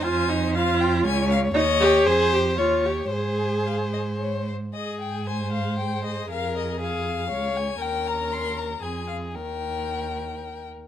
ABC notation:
X:1
M:3/4
L:1/8
Q:1/4=116
K:Ab
V:1 name="Violin"
a2 f g a f | e2 c2 d2 | c2 f e d c | e g a f g e |
f e f3 a | g b c' b a f | g4- g z |]
V:2 name="Violin"
c4 d2 | d2 c2 d2 | c4- c z | A2 c4 |
B2 A2 d2 | B4 A2 | B4- B z |]
V:3 name="Viola"
F E F3 z | E G A G F G | A4 z2 | A6- |
A6 | D4 C2 | E4- E z |]
V:4 name="Cello" clef=bass
F,,4 D,,2 | E,,2 F,,2 E,,2 | A,,4- A,, z | A,,6 |
F,,4 D,,2 | E,,4 F,,2 | E,,4- E,, z |]